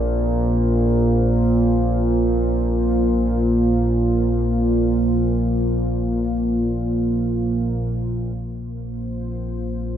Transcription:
0.00 8.33 A#1 medium
0.00 8.34 A#2 medium
0.00 8.35 F3 medium
0.00 8.36 A#3 medium
0.00 8.35 F4 medium
0.00 8.41 A4 medium
0.00 8.36 C5 medium
8.35 9.97 A#1 medium
8.35 9.97 A#2 medium
8.35 9.97 A#3 medium
8.86 9.97 C5 medium
8.97 9.97 F4 medium

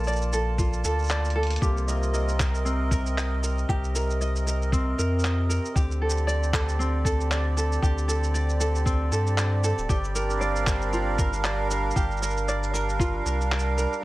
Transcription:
0.00 0.84 A#1 loud
0.00 2.32 A#3 medium
0.00 0.57 F4 medium
0.00 2.38 F4 medium
0.00 0.32 A4 medium
0.00 1.88 A#4 medium
0.00 1.62 D5 medium
0.00 1.62 A5 medium
0.00 shaker soft
0.07 1.09 D5 medium
0.07 shaker soft
0.12 shaker soft
0.16 shaker soft
0.22 shaker soft
0.33 0.83 A4 medium
0.33 shaker medium
0.58 1.62 F4 medium
0.58 kick medium
0.58 shaker soft
0.73 shaker soft
0.84 1.58 D2 medium
0.84 1.34 A4 medium
0.84 shaker medium
0.99 shaker soft
1.01 shaker soft
1.04 shaker soft
1.06 shaker soft
1.08 1.68 D5 medium
1.08 clap medium
1.08 shaker soft
1.10 shaker soft
1.25 shaker soft
1.30 closed hi-hat medium
1.35 1.67 A4 medium
1.43 closed hi-hat medium
1.47 closed hi-hat soft
1.50 closed hi-hat medium
1.53 closed hi-hat soft
1.56 closed hi-hat medium
1.62 3.65 C2 medium
1.62 5.75 C3 medium
1.62 2.65 G4 medium
1.62 kick loud
1.62 shaker soft
1.77 shaker soft
1.87 11.30 C4 medium
1.87 2.38 A#4 medium
1.87 5.76 D#5 medium
1.87 shaker medium
2.03 shaker soft
2.12 5.76 A#4 medium
2.12 3.16 D#5 medium
2.12 shaker soft
2.29 shaker soft
2.39 2.90 A#4 medium
2.39 kick loud
2.39 clap medium
2.39 shaker medium
2.55 shaker soft
2.65 4.72 C4 medium
2.65 shaker soft
2.91 3.42 A#4 medium
2.91 kick loud
2.91 shaker medium
3.06 shaker soft
3.17 4.20 D#5 medium
3.17 clap medium
3.17 shaker soft
3.43 3.94 A#4 medium
3.43 shaker medium
3.58 shaker soft
3.69 4.94 C2 medium
3.69 5.76 G4 medium
3.69 kick loud
3.69 shaker soft
3.84 shaker soft
3.95 4.45 A#4 medium
3.95 shaker medium
4.10 shaker soft
4.21 5.22 D#5 medium
4.21 shaker soft
4.36 shaker soft
4.47 4.97 A#4 medium
4.47 shaker medium
4.62 shaker soft
4.72 6.30 C4 medium
4.72 kick medium
4.72 shaker soft
4.98 5.59 F2 medium
4.98 5.48 A#4 medium
4.98 shaker medium
5.19 shaker soft
5.24 5.81 D#5 medium
5.24 clap medium
5.24 shaker soft
5.49 5.75 A#4 medium
5.49 shaker medium
5.65 shaker soft
5.76 7.78 D2 medium
5.76 9.89 D3 medium
5.76 7.82 G4 medium
5.76 kick loud
5.76 shaker soft
5.91 shaker soft
6.01 11.21 G4 medium
6.01 6.52 A4 medium
6.01 11.20 D5 medium
6.10 shaker medium
6.17 shaker soft
6.27 7.30 D5 medium
6.27 shaker soft
6.43 shaker soft
6.53 7.03 A4 medium
6.53 kick medium
6.53 clap medium
6.53 shaker medium
6.69 shaker soft
6.79 8.84 C4 medium
6.79 shaker soft
7.05 7.56 A4 medium
7.05 kick loud
7.05 shaker medium
7.20 shaker soft
7.31 7.82 D5 medium
7.31 clap medium
7.31 shaker soft
7.57 8.07 A4 medium
7.57 shaker medium
7.72 shaker soft
7.82 9.11 D2 loud
7.82 9.89 G4 medium
7.82 kick loud
7.82 shaker soft
7.98 shaker soft
8.08 8.59 A4 medium
8.08 shaker medium
8.24 shaker soft
8.34 9.37 D5 medium
8.34 shaker soft
8.49 shaker soft
8.60 9.11 A4 medium
8.60 shaker medium
8.75 shaker soft
8.85 9.89 C4 medium
8.85 kick loud
8.85 shaker soft
9.12 9.73 G2 medium
9.12 9.63 A4 medium
9.12 shaker medium
9.27 shaker soft
9.38 10.15 D5 medium
9.38 clap medium
9.38 shaker soft
9.64 9.95 A4 medium
9.64 shaker medium
9.78 9.87 D1 medium
9.78 shaker soft
9.89 11.92 G1 medium
9.89 14.03 G3 medium
9.89 10.92 G4 medium
9.89 kick loud
9.89 shaker soft
10.04 shaker soft
10.15 14.04 D4 medium
10.15 10.66 A#4 medium
10.15 shaker medium
10.29 14.03 A#4 medium
10.29 shaker soft
10.37 11.44 D5 medium
10.37 14.04 F5 medium
10.41 shaker soft
10.56 shaker soft
10.67 11.19 A#4 medium
10.67 kick loud
10.67 clap medium
10.67 shaker medium
10.82 shaker soft
10.93 12.99 F4 medium
10.93 shaker soft
11.18 11.44 A#4 medium
11.18 kick loud
11.18 shaker medium
11.33 shaker soft
11.44 11.70 D5 medium
11.44 clap medium
11.44 shaker soft
11.71 11.96 A#4 medium
11.71 shaker medium
11.91 shaker soft
11.96 13.21 G1 medium
11.96 12.22 G4 medium
11.96 kick loud
11.96 shaker soft
12.11 shaker soft
12.17 shaker soft
12.22 12.48 A#4 medium
12.22 shaker medium
12.30 shaker soft
12.37 shaker soft
12.48 12.73 D5 medium
12.48 shaker soft
12.63 shaker soft
12.74 13.25 A#4 medium
12.74 shaker medium
12.89 shaker soft
12.99 14.04 F4 medium
12.99 kick medium
12.99 shaker soft
13.25 13.87 C2 loud
13.25 13.77 A#4 medium
13.25 shaker medium
13.41 shaker soft
13.52 14.04 D5 medium
13.52 clap medium
13.59 shaker soft
13.77 14.03 A#4 medium
13.77 shaker medium
13.93 shaker soft

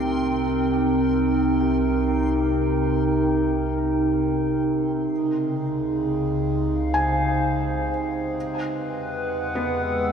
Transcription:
0.00 5.05 C2 medium
0.00 5.10 C3 medium
0.00 5.11 C4 medium
0.00 8.35 D#4 medium
0.00 1.59 G4 medium
0.00 6.33 A#4 medium
0.00 6.27 G5 medium
0.00 5.12 C6 medium
1.61 4.01 G4 soft
3.78 7.91 A#4 soft
5.11 8.30 C#2 medium
5.11 10.12 C3 medium
5.11 8.36 C#3 medium
5.11 10.12 G#3 medium
6.56 8.35 C5 medium
6.56 8.35 F5 medium
6.94 10.12 G#5 medium
8.34 10.12 E2 medium
8.51 10.12 B4 medium
8.99 10.12 F#5 medium
9.55 10.12 B3 medium
9.70 10.12 E6 medium
9.77 10.12 G#3 medium

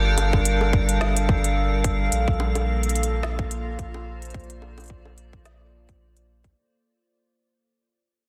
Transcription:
0.00 2.10 G1 medium
0.00 2.12 G3 medium
0.00 3.17 D4 medium
0.00 6.57 A4 medium
0.00 2.12 A#4 medium
0.00 3.71 F5 medium
0.18 closed hi-hat medium
0.18 high bongo soft
0.33 kick loud
0.33 high bongo medium
0.45 closed hi-hat loud
0.61 high bongo medium
0.73 kick loud
0.89 closed hi-hat medium
1.01 snare loud
1.17 closed hi-hat medium
1.29 kick loud
1.44 closed hi-hat medium
1.84 kick loud
1.84 closed hi-hat medium
2.12 6.54 A#1 medium
2.12 6.57 A#3 medium
2.12 closed hi-hat medium
2.28 kick loud
2.40 high bongo soft
2.55 closed hi-hat medium
2.55 high bongo medium
2.70 6.57 F4 medium
2.83 closed hi-hat soft
2.89 closed hi-hat medium
2.95 closed hi-hat medium
3.03 closed hi-hat medium
3.23 snare loud
3.39 kick loud
3.51 closed hi-hat medium
3.65 6.56 C5 medium
3.79 kick loud
3.79 closed hi-hat medium
3.94 high bongo soft
4.04 6.57 D5 medium
4.22 closed hi-hat soft
4.25 closed hi-hat soft
4.30 closed hi-hat soft
4.34 kick loud
4.34 closed hi-hat soft
4.40 closed hi-hat soft
4.44 closed hi-hat soft
4.50 closed hi-hat medium
4.62 high bongo soft
4.78 closed hi-hat soft
4.78 high bongo medium
4.80 closed hi-hat soft
4.84 closed hi-hat soft
4.86 closed hi-hat soft
4.88 kick loud
4.88 closed hi-hat soft
5.05 high bongo soft
5.18 closed hi-hat medium
5.33 kick loud
5.45 snare loud
5.45 closed hi-hat medium
5.89 kick loud
5.89 closed hi-hat soft
6.17 closed hi-hat medium
6.44 kick loud
6.44 closed hi-hat soft

